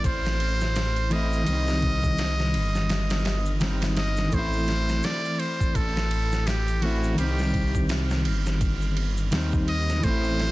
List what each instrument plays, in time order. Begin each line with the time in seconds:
Already playing: clean electric guitar E3 A3 C4 E4
0.04 detuned saw bass A1, muted trumpet C5, kick, ride, shaker
0.26 snare, shaker
0.40 ride
0.61 snare, shaker
0.76 snare, ride, shaker
0.96 ride, shaker
1.10 clean electric guitar E3 A3 C4, muted trumpet D#5, ride
1.15 clean electric guitar E4
1.33 shaker
1.44 detuned saw bass C2, clean electric guitar D#3 G3, ride, shaker
1.50 clean electric guitar C4 D#4
1.68 snare, triangle, shaker
1.82 kick, ride
2.04 kick, shaker
2.18 snare, ride, shaker
2.39 snare, shaker
2.54 detuned saw bass G1, ride
2.75 snare, shaker
2.89 snare, ride, shaker
3.10 snare, ride, shaker
3.25 detuned saw bass G1, snare, ride
3.46 shaker
3.60 clean electric guitar D#3 G3 C4, snare, ride, shaker
3.65 clean electric guitar D#4
3.82 snare, ride, shaker
3.97 muted trumpet D#5, snare, ride
4.17 snare, shaker
4.29 clean electric guitar E3 A3, kick, ride, shaker
4.33 detuned saw bass A1, clean electric guitar C4, muted trumpet C5
4.39 clean electric guitar E4
4.53 triangle, shaker
4.68 snare, ride
4.89 snare, shaker
5.03 muted trumpet D5, snare, ride, shaker
5.25 shaker
5.39 muted trumpet C5, ride
5.61 kick, shaker
5.75 detuned saw bass A1, muted trumpet A4, kick, ride, shaker
5.96 snare, shaker
6.11 ride
6.32 snare, shaker
6.47 muted trumpet G4, snare, ride, shaker
6.68 ride, shaker
6.81 clean electric guitar E3 A3 C4, muted trumpet F#4, ride
6.86 clean electric guitar E4
7.04 shaker
7.14 clean electric guitar D#3 G3
7.18 detuned saw bass C2, clean electric guitar C4, muted trumpet G4, ride, shaker
7.24 clean electric guitar D#4
7.39 snare, triangle, shaker
7.54 kick, ride
7.75 kick, shaker
7.89 snare, ride, shaker
8.10 snare, shaker
8.25 detuned saw bass G1, ride
8.46 snare, shaker
8.61 kick, ride, shaker
8.82 shaker
8.97 ride
9.17 shaker
9.31 detuned saw bass D#2, clean electric guitar D#3 G3 C4, snare, ride, shaker
9.36 clean electric guitar D#4
9.53 kick, shaker
9.68 muted trumpet D#5, ride
9.89 snare, shaker
10.00 clean electric guitar E3 A3, muted trumpet C5, kick, ride, shaker
10.04 detuned saw bass A1, clean electric guitar C4
10.10 clean electric guitar E4
10.24 triangle, shaker
10.40 snare, ride